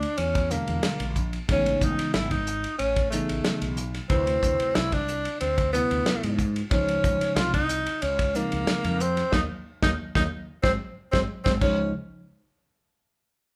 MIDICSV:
0, 0, Header, 1, 6, 480
1, 0, Start_track
1, 0, Tempo, 652884
1, 1096, Time_signature, 4, 2, 24, 8
1, 9967, End_track
2, 0, Start_track
2, 0, Title_t, "Tenor saxophone"
2, 0, Program_c, 0, 66
2, 0, Note_on_c, 0, 62, 98
2, 133, Note_on_c, 0, 61, 86
2, 144, Note_off_c, 0, 62, 0
2, 373, Note_on_c, 0, 58, 80
2, 384, Note_off_c, 0, 61, 0
2, 854, Note_off_c, 0, 58, 0
2, 1115, Note_on_c, 0, 61, 92
2, 1352, Note_on_c, 0, 63, 82
2, 1363, Note_off_c, 0, 61, 0
2, 1567, Note_off_c, 0, 63, 0
2, 1571, Note_on_c, 0, 64, 93
2, 1697, Note_on_c, 0, 63, 92
2, 1708, Note_off_c, 0, 64, 0
2, 2042, Note_off_c, 0, 63, 0
2, 2047, Note_on_c, 0, 61, 96
2, 2275, Note_off_c, 0, 61, 0
2, 2281, Note_on_c, 0, 57, 81
2, 2740, Note_off_c, 0, 57, 0
2, 3011, Note_on_c, 0, 60, 94
2, 3491, Note_on_c, 0, 64, 101
2, 3502, Note_off_c, 0, 60, 0
2, 3627, Note_on_c, 0, 62, 98
2, 3638, Note_off_c, 0, 64, 0
2, 3970, Note_off_c, 0, 62, 0
2, 3975, Note_on_c, 0, 60, 79
2, 4200, Note_off_c, 0, 60, 0
2, 4213, Note_on_c, 0, 59, 83
2, 4666, Note_off_c, 0, 59, 0
2, 4934, Note_on_c, 0, 61, 99
2, 5414, Note_on_c, 0, 65, 90
2, 5425, Note_off_c, 0, 61, 0
2, 5541, Note_off_c, 0, 65, 0
2, 5545, Note_on_c, 0, 63, 106
2, 5902, Note_on_c, 0, 61, 88
2, 5913, Note_off_c, 0, 63, 0
2, 6144, Note_on_c, 0, 58, 89
2, 6155, Note_off_c, 0, 61, 0
2, 6621, Note_on_c, 0, 60, 87
2, 6632, Note_off_c, 0, 58, 0
2, 6857, Note_off_c, 0, 60, 0
2, 6861, Note_on_c, 0, 63, 82
2, 6921, Note_off_c, 0, 63, 0
2, 7226, Note_on_c, 0, 63, 93
2, 7281, Note_off_c, 0, 63, 0
2, 7468, Note_on_c, 0, 63, 91
2, 7522, Note_off_c, 0, 63, 0
2, 7814, Note_on_c, 0, 60, 86
2, 7876, Note_off_c, 0, 60, 0
2, 8175, Note_on_c, 0, 60, 82
2, 8233, Note_off_c, 0, 60, 0
2, 8412, Note_on_c, 0, 60, 74
2, 8471, Note_off_c, 0, 60, 0
2, 8536, Note_on_c, 0, 61, 82
2, 8760, Note_off_c, 0, 61, 0
2, 9967, End_track
3, 0, Start_track
3, 0, Title_t, "Tine electric piano"
3, 0, Program_c, 1, 4
3, 370, Note_on_c, 1, 50, 59
3, 372, Note_on_c, 1, 54, 54
3, 378, Note_on_c, 1, 56, 55
3, 381, Note_on_c, 1, 47, 57
3, 385, Note_on_c, 1, 62, 68
3, 837, Note_off_c, 1, 50, 0
3, 838, Note_off_c, 1, 54, 0
3, 841, Note_off_c, 1, 56, 0
3, 843, Note_off_c, 1, 47, 0
3, 845, Note_off_c, 1, 62, 0
3, 1091, Note_on_c, 1, 49, 72
3, 1098, Note_on_c, 1, 52, 59
3, 1101, Note_on_c, 1, 56, 63
3, 1103, Note_on_c, 1, 59, 61
3, 1108, Note_on_c, 1, 63, 76
3, 1717, Note_off_c, 1, 49, 0
3, 1720, Note_off_c, 1, 52, 0
3, 1722, Note_off_c, 1, 56, 0
3, 1722, Note_off_c, 1, 59, 0
3, 1725, Note_off_c, 1, 63, 0
3, 2292, Note_on_c, 1, 49, 60
3, 2295, Note_on_c, 1, 52, 55
3, 2297, Note_on_c, 1, 68, 58
3, 2302, Note_on_c, 1, 59, 60
3, 2306, Note_on_c, 1, 63, 72
3, 2759, Note_off_c, 1, 49, 0
3, 2761, Note_off_c, 1, 52, 0
3, 2762, Note_off_c, 1, 68, 0
3, 2764, Note_off_c, 1, 59, 0
3, 2766, Note_off_c, 1, 63, 0
3, 3013, Note_on_c, 1, 48, 65
3, 3014, Note_on_c, 1, 54, 64
3, 3017, Note_on_c, 1, 57, 68
3, 3022, Note_on_c, 1, 64, 80
3, 3022, Note_on_c, 1, 71, 68
3, 3638, Note_off_c, 1, 48, 0
3, 3639, Note_off_c, 1, 54, 0
3, 3640, Note_off_c, 1, 57, 0
3, 3643, Note_off_c, 1, 64, 0
3, 3643, Note_off_c, 1, 71, 0
3, 4212, Note_on_c, 1, 48, 61
3, 4216, Note_on_c, 1, 54, 57
3, 4219, Note_on_c, 1, 57, 54
3, 4225, Note_on_c, 1, 59, 58
3, 4228, Note_on_c, 1, 64, 68
3, 4679, Note_off_c, 1, 48, 0
3, 4681, Note_off_c, 1, 54, 0
3, 4683, Note_off_c, 1, 57, 0
3, 4686, Note_off_c, 1, 59, 0
3, 4687, Note_off_c, 1, 64, 0
3, 4933, Note_on_c, 1, 49, 67
3, 4937, Note_on_c, 1, 53, 67
3, 4938, Note_on_c, 1, 56, 58
3, 4941, Note_on_c, 1, 72, 61
3, 4945, Note_on_c, 1, 63, 75
3, 5558, Note_off_c, 1, 49, 0
3, 5561, Note_off_c, 1, 53, 0
3, 5561, Note_off_c, 1, 56, 0
3, 5563, Note_off_c, 1, 72, 0
3, 5565, Note_off_c, 1, 63, 0
3, 6134, Note_on_c, 1, 49, 55
3, 6138, Note_on_c, 1, 53, 55
3, 6140, Note_on_c, 1, 56, 54
3, 6142, Note_on_c, 1, 60, 60
3, 6144, Note_on_c, 1, 63, 68
3, 6601, Note_off_c, 1, 49, 0
3, 6602, Note_off_c, 1, 53, 0
3, 6603, Note_off_c, 1, 56, 0
3, 6605, Note_off_c, 1, 60, 0
3, 6605, Note_off_c, 1, 63, 0
3, 6862, Note_on_c, 1, 51, 95
3, 6862, Note_on_c, 1, 54, 83
3, 6863, Note_on_c, 1, 58, 99
3, 6941, Note_off_c, 1, 51, 0
3, 6941, Note_off_c, 1, 54, 0
3, 6942, Note_off_c, 1, 58, 0
3, 7227, Note_on_c, 1, 58, 80
3, 7229, Note_on_c, 1, 54, 87
3, 7230, Note_on_c, 1, 51, 91
3, 7299, Note_off_c, 1, 58, 0
3, 7301, Note_off_c, 1, 51, 0
3, 7301, Note_off_c, 1, 54, 0
3, 7472, Note_on_c, 1, 51, 88
3, 7475, Note_on_c, 1, 54, 94
3, 7475, Note_on_c, 1, 58, 94
3, 7542, Note_off_c, 1, 51, 0
3, 7544, Note_off_c, 1, 54, 0
3, 7544, Note_off_c, 1, 58, 0
3, 7823, Note_on_c, 1, 56, 74
3, 7825, Note_on_c, 1, 54, 85
3, 7825, Note_on_c, 1, 60, 86
3, 7902, Note_off_c, 1, 56, 0
3, 7903, Note_off_c, 1, 54, 0
3, 7903, Note_off_c, 1, 60, 0
3, 8192, Note_on_c, 1, 56, 87
3, 8192, Note_on_c, 1, 60, 85
3, 8193, Note_on_c, 1, 54, 88
3, 8262, Note_off_c, 1, 56, 0
3, 8262, Note_off_c, 1, 60, 0
3, 8263, Note_off_c, 1, 54, 0
3, 8427, Note_on_c, 1, 60, 81
3, 8429, Note_on_c, 1, 54, 87
3, 8431, Note_on_c, 1, 56, 83
3, 8499, Note_off_c, 1, 60, 0
3, 8500, Note_off_c, 1, 54, 0
3, 8502, Note_off_c, 1, 56, 0
3, 8543, Note_on_c, 1, 53, 67
3, 8544, Note_on_c, 1, 49, 66
3, 8544, Note_on_c, 1, 56, 65
3, 8544, Note_on_c, 1, 63, 77
3, 8545, Note_on_c, 1, 72, 63
3, 8764, Note_off_c, 1, 53, 0
3, 8765, Note_off_c, 1, 49, 0
3, 8765, Note_off_c, 1, 56, 0
3, 8765, Note_off_c, 1, 63, 0
3, 8765, Note_off_c, 1, 72, 0
3, 9967, End_track
4, 0, Start_track
4, 0, Title_t, "Fretless electric bass"
4, 0, Program_c, 2, 35
4, 133, Note_on_c, 2, 40, 83
4, 418, Note_off_c, 2, 40, 0
4, 504, Note_on_c, 2, 40, 78
4, 592, Note_off_c, 2, 40, 0
4, 735, Note_on_c, 2, 34, 83
4, 1012, Note_off_c, 2, 34, 0
4, 1094, Note_on_c, 2, 33, 85
4, 1281, Note_off_c, 2, 33, 0
4, 1333, Note_on_c, 2, 33, 89
4, 1432, Note_off_c, 2, 33, 0
4, 1576, Note_on_c, 2, 32, 93
4, 1948, Note_off_c, 2, 32, 0
4, 2055, Note_on_c, 2, 33, 80
4, 2340, Note_off_c, 2, 33, 0
4, 2420, Note_on_c, 2, 33, 70
4, 2510, Note_off_c, 2, 33, 0
4, 2660, Note_on_c, 2, 35, 84
4, 2936, Note_off_c, 2, 35, 0
4, 3012, Note_on_c, 2, 38, 86
4, 3201, Note_off_c, 2, 38, 0
4, 3256, Note_on_c, 2, 38, 86
4, 3355, Note_off_c, 2, 38, 0
4, 3505, Note_on_c, 2, 36, 96
4, 3874, Note_off_c, 2, 36, 0
4, 3981, Note_on_c, 2, 38, 78
4, 4264, Note_off_c, 2, 38, 0
4, 4347, Note_on_c, 2, 38, 78
4, 4435, Note_off_c, 2, 38, 0
4, 4585, Note_on_c, 2, 44, 92
4, 4859, Note_off_c, 2, 44, 0
4, 4932, Note_on_c, 2, 37, 87
4, 5120, Note_off_c, 2, 37, 0
4, 5176, Note_on_c, 2, 37, 85
4, 5275, Note_off_c, 2, 37, 0
4, 5412, Note_on_c, 2, 36, 95
4, 5787, Note_off_c, 2, 36, 0
4, 5902, Note_on_c, 2, 37, 81
4, 6184, Note_off_c, 2, 37, 0
4, 6271, Note_on_c, 2, 37, 80
4, 6357, Note_off_c, 2, 37, 0
4, 6502, Note_on_c, 2, 41, 88
4, 6778, Note_off_c, 2, 41, 0
4, 6857, Note_on_c, 2, 39, 77
4, 6952, Note_off_c, 2, 39, 0
4, 7226, Note_on_c, 2, 39, 93
4, 7310, Note_off_c, 2, 39, 0
4, 7465, Note_on_c, 2, 39, 86
4, 7550, Note_off_c, 2, 39, 0
4, 7817, Note_on_c, 2, 32, 89
4, 7912, Note_off_c, 2, 32, 0
4, 8185, Note_on_c, 2, 32, 82
4, 8270, Note_off_c, 2, 32, 0
4, 8424, Note_on_c, 2, 32, 92
4, 8510, Note_off_c, 2, 32, 0
4, 8539, Note_on_c, 2, 37, 93
4, 8762, Note_off_c, 2, 37, 0
4, 9967, End_track
5, 0, Start_track
5, 0, Title_t, "Muted fretless electric bass strokes"
5, 616, Note_on_c, 9, 29, 32
5, 689, Note_off_c, 9, 29, 0
5, 3386, Note_on_c, 9, 29, 37
5, 3459, Note_off_c, 9, 29, 0
5, 4457, Note_on_c, 9, 29, 36
5, 4531, Note_off_c, 9, 29, 0
5, 5304, Note_on_c, 9, 29, 40
5, 5378, Note_off_c, 9, 29, 0
5, 9967, End_track
6, 0, Start_track
6, 0, Title_t, "Drums"
6, 19, Note_on_c, 9, 51, 59
6, 92, Note_off_c, 9, 51, 0
6, 129, Note_on_c, 9, 51, 77
6, 203, Note_off_c, 9, 51, 0
6, 258, Note_on_c, 9, 51, 65
6, 259, Note_on_c, 9, 36, 81
6, 332, Note_off_c, 9, 51, 0
6, 333, Note_off_c, 9, 36, 0
6, 372, Note_on_c, 9, 44, 80
6, 373, Note_on_c, 9, 38, 30
6, 445, Note_off_c, 9, 44, 0
6, 446, Note_off_c, 9, 38, 0
6, 496, Note_on_c, 9, 51, 59
6, 569, Note_off_c, 9, 51, 0
6, 609, Note_on_c, 9, 51, 84
6, 610, Note_on_c, 9, 38, 105
6, 682, Note_off_c, 9, 51, 0
6, 683, Note_off_c, 9, 38, 0
6, 734, Note_on_c, 9, 51, 62
6, 807, Note_off_c, 9, 51, 0
6, 850, Note_on_c, 9, 44, 72
6, 852, Note_on_c, 9, 36, 58
6, 924, Note_off_c, 9, 44, 0
6, 925, Note_off_c, 9, 36, 0
6, 978, Note_on_c, 9, 51, 47
6, 1051, Note_off_c, 9, 51, 0
6, 1094, Note_on_c, 9, 36, 95
6, 1094, Note_on_c, 9, 51, 82
6, 1167, Note_off_c, 9, 51, 0
6, 1168, Note_off_c, 9, 36, 0
6, 1222, Note_on_c, 9, 51, 55
6, 1295, Note_off_c, 9, 51, 0
6, 1333, Note_on_c, 9, 44, 78
6, 1334, Note_on_c, 9, 36, 78
6, 1407, Note_off_c, 9, 36, 0
6, 1407, Note_off_c, 9, 44, 0
6, 1462, Note_on_c, 9, 38, 31
6, 1462, Note_on_c, 9, 51, 68
6, 1535, Note_off_c, 9, 51, 0
6, 1536, Note_off_c, 9, 38, 0
6, 1572, Note_on_c, 9, 51, 78
6, 1573, Note_on_c, 9, 38, 105
6, 1646, Note_off_c, 9, 38, 0
6, 1646, Note_off_c, 9, 51, 0
6, 1697, Note_on_c, 9, 51, 59
6, 1700, Note_on_c, 9, 36, 63
6, 1771, Note_off_c, 9, 51, 0
6, 1773, Note_off_c, 9, 36, 0
6, 1815, Note_on_c, 9, 44, 72
6, 1888, Note_off_c, 9, 44, 0
6, 1941, Note_on_c, 9, 51, 54
6, 2014, Note_off_c, 9, 51, 0
6, 2052, Note_on_c, 9, 51, 70
6, 2126, Note_off_c, 9, 51, 0
6, 2178, Note_on_c, 9, 51, 63
6, 2179, Note_on_c, 9, 36, 70
6, 2252, Note_off_c, 9, 51, 0
6, 2253, Note_off_c, 9, 36, 0
6, 2293, Note_on_c, 9, 44, 79
6, 2294, Note_on_c, 9, 38, 27
6, 2367, Note_off_c, 9, 44, 0
6, 2368, Note_off_c, 9, 38, 0
6, 2421, Note_on_c, 9, 51, 59
6, 2494, Note_off_c, 9, 51, 0
6, 2532, Note_on_c, 9, 51, 78
6, 2533, Note_on_c, 9, 38, 103
6, 2606, Note_off_c, 9, 51, 0
6, 2607, Note_off_c, 9, 38, 0
6, 2659, Note_on_c, 9, 51, 63
6, 2732, Note_off_c, 9, 51, 0
6, 2771, Note_on_c, 9, 44, 71
6, 2845, Note_off_c, 9, 44, 0
6, 2900, Note_on_c, 9, 51, 48
6, 2901, Note_on_c, 9, 38, 30
6, 2974, Note_off_c, 9, 38, 0
6, 2974, Note_off_c, 9, 51, 0
6, 3012, Note_on_c, 9, 51, 76
6, 3013, Note_on_c, 9, 36, 88
6, 3085, Note_off_c, 9, 51, 0
6, 3087, Note_off_c, 9, 36, 0
6, 3140, Note_on_c, 9, 51, 56
6, 3213, Note_off_c, 9, 51, 0
6, 3255, Note_on_c, 9, 36, 76
6, 3256, Note_on_c, 9, 44, 72
6, 3328, Note_off_c, 9, 36, 0
6, 3330, Note_off_c, 9, 44, 0
6, 3379, Note_on_c, 9, 51, 57
6, 3453, Note_off_c, 9, 51, 0
6, 3494, Note_on_c, 9, 38, 106
6, 3494, Note_on_c, 9, 51, 75
6, 3567, Note_off_c, 9, 51, 0
6, 3568, Note_off_c, 9, 38, 0
6, 3619, Note_on_c, 9, 51, 52
6, 3620, Note_on_c, 9, 36, 72
6, 3692, Note_off_c, 9, 51, 0
6, 3694, Note_off_c, 9, 36, 0
6, 3735, Note_on_c, 9, 44, 73
6, 3809, Note_off_c, 9, 44, 0
6, 3861, Note_on_c, 9, 51, 60
6, 3935, Note_off_c, 9, 51, 0
6, 3975, Note_on_c, 9, 51, 77
6, 4048, Note_off_c, 9, 51, 0
6, 4101, Note_on_c, 9, 36, 72
6, 4102, Note_on_c, 9, 51, 60
6, 4175, Note_off_c, 9, 36, 0
6, 4175, Note_off_c, 9, 51, 0
6, 4219, Note_on_c, 9, 44, 80
6, 4220, Note_on_c, 9, 38, 31
6, 4293, Note_off_c, 9, 44, 0
6, 4294, Note_off_c, 9, 38, 0
6, 4344, Note_on_c, 9, 51, 55
6, 4418, Note_off_c, 9, 51, 0
6, 4456, Note_on_c, 9, 51, 72
6, 4457, Note_on_c, 9, 38, 97
6, 4529, Note_off_c, 9, 51, 0
6, 4530, Note_off_c, 9, 38, 0
6, 4583, Note_on_c, 9, 51, 64
6, 4657, Note_off_c, 9, 51, 0
6, 4695, Note_on_c, 9, 36, 60
6, 4695, Note_on_c, 9, 44, 72
6, 4769, Note_off_c, 9, 36, 0
6, 4769, Note_off_c, 9, 44, 0
6, 4823, Note_on_c, 9, 51, 59
6, 4896, Note_off_c, 9, 51, 0
6, 4934, Note_on_c, 9, 51, 78
6, 4935, Note_on_c, 9, 36, 97
6, 5007, Note_off_c, 9, 51, 0
6, 5008, Note_off_c, 9, 36, 0
6, 5062, Note_on_c, 9, 51, 56
6, 5135, Note_off_c, 9, 51, 0
6, 5176, Note_on_c, 9, 36, 82
6, 5177, Note_on_c, 9, 44, 80
6, 5250, Note_off_c, 9, 36, 0
6, 5251, Note_off_c, 9, 44, 0
6, 5302, Note_on_c, 9, 51, 68
6, 5303, Note_on_c, 9, 38, 29
6, 5376, Note_off_c, 9, 38, 0
6, 5376, Note_off_c, 9, 51, 0
6, 5414, Note_on_c, 9, 51, 89
6, 5415, Note_on_c, 9, 38, 100
6, 5488, Note_off_c, 9, 38, 0
6, 5488, Note_off_c, 9, 51, 0
6, 5542, Note_on_c, 9, 36, 73
6, 5544, Note_on_c, 9, 51, 58
6, 5616, Note_off_c, 9, 36, 0
6, 5617, Note_off_c, 9, 51, 0
6, 5654, Note_on_c, 9, 44, 80
6, 5728, Note_off_c, 9, 44, 0
6, 5782, Note_on_c, 9, 51, 62
6, 5856, Note_off_c, 9, 51, 0
6, 5896, Note_on_c, 9, 51, 76
6, 5970, Note_off_c, 9, 51, 0
6, 6022, Note_on_c, 9, 36, 78
6, 6022, Note_on_c, 9, 51, 68
6, 6095, Note_off_c, 9, 36, 0
6, 6095, Note_off_c, 9, 51, 0
6, 6137, Note_on_c, 9, 44, 73
6, 6138, Note_on_c, 9, 38, 31
6, 6211, Note_off_c, 9, 44, 0
6, 6212, Note_off_c, 9, 38, 0
6, 6262, Note_on_c, 9, 51, 61
6, 6336, Note_off_c, 9, 51, 0
6, 6376, Note_on_c, 9, 38, 103
6, 6376, Note_on_c, 9, 51, 79
6, 6449, Note_off_c, 9, 51, 0
6, 6450, Note_off_c, 9, 38, 0
6, 6502, Note_on_c, 9, 51, 62
6, 6576, Note_off_c, 9, 51, 0
6, 6618, Note_on_c, 9, 44, 68
6, 6691, Note_off_c, 9, 44, 0
6, 6742, Note_on_c, 9, 38, 27
6, 6742, Note_on_c, 9, 51, 54
6, 6815, Note_off_c, 9, 51, 0
6, 6816, Note_off_c, 9, 38, 0
6, 6854, Note_on_c, 9, 38, 90
6, 6857, Note_on_c, 9, 36, 78
6, 6928, Note_off_c, 9, 38, 0
6, 6931, Note_off_c, 9, 36, 0
6, 7223, Note_on_c, 9, 38, 94
6, 7224, Note_on_c, 9, 36, 87
6, 7296, Note_off_c, 9, 38, 0
6, 7298, Note_off_c, 9, 36, 0
6, 7465, Note_on_c, 9, 36, 82
6, 7465, Note_on_c, 9, 38, 86
6, 7538, Note_off_c, 9, 36, 0
6, 7539, Note_off_c, 9, 38, 0
6, 7819, Note_on_c, 9, 36, 87
6, 7821, Note_on_c, 9, 38, 83
6, 7893, Note_off_c, 9, 36, 0
6, 7895, Note_off_c, 9, 38, 0
6, 8186, Note_on_c, 9, 36, 78
6, 8187, Note_on_c, 9, 38, 87
6, 8259, Note_off_c, 9, 36, 0
6, 8260, Note_off_c, 9, 38, 0
6, 8425, Note_on_c, 9, 36, 94
6, 8425, Note_on_c, 9, 38, 85
6, 8498, Note_off_c, 9, 36, 0
6, 8499, Note_off_c, 9, 38, 0
6, 8539, Note_on_c, 9, 36, 82
6, 8539, Note_on_c, 9, 49, 68
6, 8612, Note_off_c, 9, 36, 0
6, 8612, Note_off_c, 9, 49, 0
6, 9967, End_track
0, 0, End_of_file